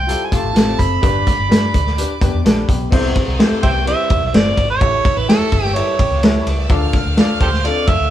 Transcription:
Already playing: fingered electric bass C2, violin section C5 C6, harmonica G5
0.07 clean electric guitar G3 E4, upright piano F4 G4 A4, closed hi-hat
0.26 harmonica G#5
0.31 fingered electric bass A1, clean electric guitar A3 F4, upright piano F4 G4 A4, violin section E5 E6, harmonica A5, kick, closed hi-hat
0.44 fingered electric bass A1
0.53 fingered electric bass A1, clean electric guitar C4 A4, upright piano F4 G4 A4, snare, closed hi-hat
0.79 fingered electric bass F#1, harmonica B5, kick, closed hi-hat
1.01 fingered electric bass G1, upright piano G2 D4 G4 B4, violin section D5 D6, kick, closed hi-hat
1.27 kick, snare, closed hi-hat
1.39 fingered electric bass G1
1.49 fingered electric bass G2, upright piano D4 G4 B4, snare, closed hi-hat
1.74 fingered electric bass D2, kick, closed hi-hat
1.86 snare
1.97 upright piano D4 G4 B4, closed hi-hat
2.21 fingered electric bass F2, clean electric guitar B3 G4, upright piano D4 G4 B4, kick, closed hi-hat
2.34 fingered electric bass E2
2.44 fingered electric bass A#1, upright piano D4 G4 B4, clean electric guitar A4, violin section B4 B5, snare, closed hi-hat
2.68 fingered electric bass B1, clean electric guitar B3 G4, kick, closed hi-hat
2.91 fingered electric bass C2, upright piano C3 C4 E4 G4 C5, violin section C5 C6, kick, crash
3.15 kick, ride
3.28 fingered electric bass C2
3.39 upright piano C4 E4 G4 C5, clean electric guitar C4 A4, snare, ride
3.52 muted fingered electric bass stroke
3.63 fingered electric bass C2, clean electric guitar B3 G4, harmonica C5 E5 G5, kick, ride
3.86 clean electric guitar G3 E4, upright piano C4 E4 G4 C5, harmonica E5, ride
4.10 fingered electric bass E2, kick, ride
4.22 fingered electric bass B1
4.27 harmonica E5
4.33 fingered electric bass G1, upright piano C4 E4 G4 C5, harmonica D5, snare, ride
4.57 fingered electric bass G#1, kick, ride
4.70 harmonica C#5
4.80 fingered electric bass A1, upright piano A2 E4 G4 A4 C#5, violin section E5 E6, kick, ride
5.05 kick, ride
5.17 fingered electric bass A1, harmonica B4
5.28 upright piano E4 G4 A4 C#5, harmonica A4, snare, ride
5.40 muted fingered electric bass stroke
5.52 fingered electric bass G1, kick, ride
5.64 harmonica G4, snare
5.75 clean electric guitar G3 E4, upright piano E4 G4 A4 C#5, harmonica C#5, ride
5.99 fingered electric bass A1, clean electric guitar B3 G4, kick, ride
6.11 fingered electric bass C#2, violin section F4 F5
6.22 clean electric guitar G3 E4, upright piano E4 G4 A4 C#5, violin section G4 G5, snare, ride
6.31 violin section A4 A5
6.41 violin section B4 B5
6.47 fingered electric bass C#2, violin section C#5 C#6, ride
6.55 violin section D5 D6
6.63 violin section E5 E6
6.69 fingered electric bass D2, upright piano D3 D4 F4 A4 D5, violin section F5 F6, kick, ride
6.93 kick, snare, ride
7.06 fingered electric bass D2
7.17 upright piano D4 F4 A4 D5, snare, ride
7.29 muted fingered electric bass stroke
7.40 fingered electric bass D2, harmonica G4 A4 C5, kick, ride
7.53 snare
7.64 clean electric guitar C4 A4, upright piano D4 F4 A4 D5, harmonica D5, ride
7.87 fingered electric bass F2, clean electric guitar A3 F4, harmonica E5, kick, ride
8.00 fingered electric bass D2

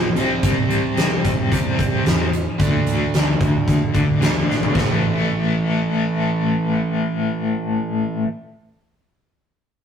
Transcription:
Already playing: overdriven electric guitar A#2 F3 A#3
0.15 picked electric bass C2, overdriven electric guitar C3 G3 C4, closed hi-hat
0.43 picked electric bass C2, kick, closed hi-hat
0.69 picked electric bass C2, closed hi-hat
0.97 picked electric bass C2, snare, closed hi-hat
1.24 picked electric bass A#1, kick, closed hi-hat
1.51 picked electric bass C2, overdriven electric guitar C3 G3 C4, kick, closed hi-hat
1.77 picked electric bass C2, overdriven electric guitar C3 G3 C4, kick, closed hi-hat
2.05 picked electric bass E2, snare, closed hi-hat
2.33 closed hi-hat
2.59 picked electric bass D2, overdriven electric guitar D3 A3 D4, kick, closed hi-hat
2.86 picked electric bass D2, closed hi-hat
3.13 picked electric bass D2, snare, closed hi-hat
3.40 picked electric bass D2, kick, closed hi-hat
3.67 picked electric bass C2, kick, closed hi-hat
3.94 picked electric bass D2, overdriven electric guitar D3 A3 D4, kick, closed hi-hat
4.20 picked electric bass D2, overdriven electric guitar D3 A3 D4, snare, closed hi-hat
4.47 picked electric bass A#1, snare
4.63 floor tom
4.73 picked electric bass A1, overdriven electric guitar A2 E3, kick
4.77 overdriven electric guitar A3, snare

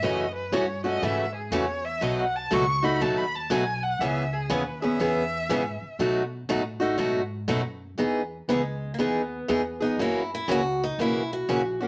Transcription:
0.02 upright bass F#2, steel-string acoustic guitar C#3 E3 A3 C#4 F#4, violin D#5
0.35 violin B4
0.52 upright bass G2, steel-string acoustic guitar C#3 E3 A3 C#4 F#4, violin C#5
0.84 steel-string acoustic guitar A3 C#4 F#4, violin D#5
1.02 upright bass G#2, steel-string acoustic guitar C#3 E3 A3 C#4 F#4, violin E5
1.35 violin G#4
1.51 upright bass E2, steel-string acoustic guitar C#3 E3 A3 C#4 F#4, violin C#5
1.85 violin E5
2.01 upright bass B1, steel-string acoustic guitar B2 F#3 A3 D#4 F#4, violin D#5
2.20 violin F#5
2.36 violin A5
2.51 upright bass C#2, steel-string acoustic guitar B2 F#3 A3 D#4 F#4, violin C#6
2.83 steel-string acoustic guitar A3 D#4 F#4, violin B5
3.01 upright bass D#2, steel-string acoustic guitar B2 F#3 A3 D#4 F#4, violin A5
3.17 violin B5
3.35 violin A5
3.50 upright bass B1, steel-string acoustic guitar B2 F#3 A3 D#4 F#4, violin G#5
3.83 violin F#5
3.99 upright bass C#2, steel-string acoustic guitar C#3 E3 B3 C#4 G#4, violin E5
4.33 violin G#4
4.50 upright bass D#2, steel-string acoustic guitar C#3 E3 B3 C#4 G#4, violin B4
4.82 steel-string acoustic guitar B3 C#4 G#4, violin E5
4.99 upright bass E2, steel-string acoustic guitar C#3 E3 B3 C#4 G#4
5.49 upright bass G#2, steel-string acoustic guitar C#3 E3 B3 C#4 G#4
5.82 muted upright bass stroke
5.99 upright bass B2, steel-string acoustic guitar B2 F#3 A3 D#4 F#4
6.49 upright bass A2, steel-string acoustic guitar B2 F#3 A3 D#4 F#4
6.80 steel-string acoustic guitar A3 D#4 F#4
6.98 upright bass G#2, steel-string acoustic guitar B2 F#3 A3 D#4 F#4
7.48 upright bass F#2, steel-string acoustic guitar B2 F#3 A3 D#4 F#4
7.98 upright bass E2, steel-string acoustic guitar E3 B3 D#4 G#4
8.48 upright bass C#2, steel-string acoustic guitar E3 G#3 B3 D#4 G#4
8.94 steel-string acoustic guitar A#3
8.98 upright bass D#2, steel-string acoustic guitar E3 B3 D#4 G#4
9.48 upright bass E2, steel-string acoustic guitar E3 B3 D#4 G#4
9.80 steel-string acoustic guitar B3 D#4 G#4
9.98 upright bass F#2, steel-string acoustic guitar C#3 E3 A#3 C#4 E4 F#4
10.35 steel-string acoustic guitar E4
10.48 upright bass C#2, steel-string acoustic guitar C#3 E3 A#3 C#4 F#4
10.84 steel-string acoustic guitar D#4
10.98 upright bass B1, steel-string acoustic guitar C#3 E3 A#3 C#4 E4 F#4
11.33 steel-string acoustic guitar F#4
11.49 upright bass A#1, steel-string acoustic guitar C#3 E3 A#3 C#4 F#4
11.81 steel-string acoustic guitar A#3 C#4 F#4

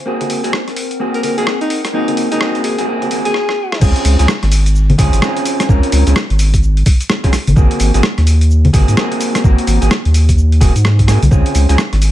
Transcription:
Already playing: ambient pad C4 C5 G#5
0.01 ambient pad A#4
0.06 clean electric guitar A#3 C4 F#4 G#4
0.21 closed hi-hat, high conga
0.30 open hi-hat
0.40 clean electric guitar G#4, ambient pad F#5
0.44 clean electric guitar A#3 C4 F#4, closed hi-hat
0.53 cross-stick
0.68 cross-stick, closed hi-hat
0.76 open hi-hat
0.91 closed hi-hat
1.00 clean electric guitar A#3 C4 F#4 G#4
1.14 alto saxophone A#4, closed hi-hat
1.23 alto saxophone A#4, open hi-hat, high conga
1.38 clean electric guitar A#3 C4 F#4 G#4, alto saxophone G#4, closed hi-hat
1.47 cross-stick
1.61 alto saxophone D#4, closed hi-hat
1.70 open hi-hat
1.85 cross-stick, closed hi-hat
1.93 clean electric guitar A#3 C4 F#4 G#4, alto saxophone D#4
2.08 closed hi-hat, high conga
2.17 open hi-hat
2.31 clean electric guitar A#3 C4 F#4 G#4, alto saxophone D#4, closed hi-hat
2.40 clean electric guitar A#3 C4 F#4 G#4, cross-stick
2.55 closed hi-hat
2.64 alto saxophone G#4, open hi-hat
2.78 clean electric guitar A#3 C4 F#4 G#4, closed hi-hat
2.87 clean electric guitar A#3 C4 F#4 G#4
3.02 closed hi-hat, high conga
3.11 clean electric guitar A#3 C4 F#4 G#4, open hi-hat
3.25 alto saxophone G#4, closed hi-hat
3.34 cross-stick
3.49 cross-stick
3.72 cross-stick
3.81 sub bass C#2, clean electric guitar C4 C#4 F4 G#4, kick, crash, cabasa
3.96 closed hi-hat
4.05 sub bass C#2, open hi-hat, cabasa
4.19 sub bass C#2, clean electric guitar C4 C#4 F4 G#4, closed hi-hat, cabasa
4.28 cross-stick, cabasa
4.43 sub bass G#1, cross-stick, closed hi-hat
4.52 open hi-hat, cabasa
4.66 closed hi-hat, cabasa
4.75 cabasa
4.90 closed hi-hat, high conga
4.98 sub bass C#2, clean electric guitar C4 C#4 F4 G#4, kick, open hi-hat, cabasa
5.13 sub bass G#1, closed hi-hat, cabasa
5.21 clean electric guitar C4 C#4 F4 G#4, cross-stick, cabasa
5.37 closed hi-hat
5.45 open hi-hat, cabasa
5.60 cross-stick, closed hi-hat, cabasa
5.69 sub bass C#2, clean electric guitar C4 C#4 F4 A#4, kick, cabasa
5.83 closed hi-hat
5.92 sub bass C#2, open hi-hat, cabasa
6.07 sub bass C#2, clean electric guitar C4 C#4 F4 G#4, closed hi-hat, cabasa
6.16 cross-stick, cabasa
6.30 sub bass G#1, closed hi-hat
6.39 open hi-hat, cabasa
6.54 kick, closed hi-hat, cabasa
6.63 cabasa
6.77 closed hi-hat
6.86 kick, open hi-hat, cabasa
7.01 closed hi-hat, cabasa
7.10 cross-stick, cabasa
7.24 clean electric guitar C4 C#4 F4 G#4, kick, closed hi-hat
7.33 cross-stick, open hi-hat, cabasa
7.47 sub bass G#1, closed hi-hat, high conga, cabasa
7.56 sub bass G#1, clean electric guitar A#3 C4 F#4 G#4, kick, cabasa
7.71 closed hi-hat
7.80 sub bass G#1, open hi-hat, cabasa
7.94 sub bass G#1, clean electric guitar A#3 C4 F#4 G#4, closed hi-hat, cabasa
8.03 cross-stick, cabasa
8.18 sub bass D#2, cross-stick, closed hi-hat
8.27 open hi-hat, cabasa
8.41 closed hi-hat, cabasa
8.50 cabasa
8.65 closed hi-hat, high conga
8.73 sub bass G#1, clean electric guitar A#3 C4 F#4 G#4, kick, open hi-hat, cabasa
8.88 sub bass G#2, closed hi-hat, cabasa
8.97 clean electric guitar A#3 C4 F#4 G#4, cross-stick, cabasa
9.12 closed hi-hat
9.21 open hi-hat, cabasa
9.35 cross-stick, closed hi-hat, cabasa
9.44 sub bass G#1, clean electric guitar A#3 C4 F#4 A#4, kick, cabasa
9.58 closed hi-hat
9.67 sub bass G#1, open hi-hat, cabasa
9.81 sub bass G#1, clean electric guitar A#3 C4 F#4 G#4, closed hi-hat, cabasa
9.91 cross-stick, cabasa
10.05 sub bass D#2, closed hi-hat
10.14 open hi-hat, cabasa
10.29 kick, closed hi-hat, cabasa
10.38 cabasa
10.52 closed hi-hat
10.61 sub bass D#1, clean electric guitar A#3 C4 F#4 G#4, kick, open hi-hat, cabasa
10.76 sub bass G#2, closed hi-hat, cabasa
10.85 cross-stick, cabasa
10.99 kick, closed hi-hat
11.07 clean electric guitar A#3 C4 F#4 G#4, cross-stick, open hi-hat, cabasa
11.22 sub bass C2, closed hi-hat, high conga, cabasa
11.31 sub bass C#2, clean electric guitar C4 C#4 F4 G#4, kick, cabasa
11.46 closed hi-hat
11.55 sub bass C#2, open hi-hat, cabasa
11.69 sub bass C#2, clean electric guitar C4 C#4 F4 G#4, closed hi-hat, cabasa
11.78 cross-stick, cabasa
11.93 sub bass G#1, cross-stick, closed hi-hat
12.02 open hi-hat, cabasa

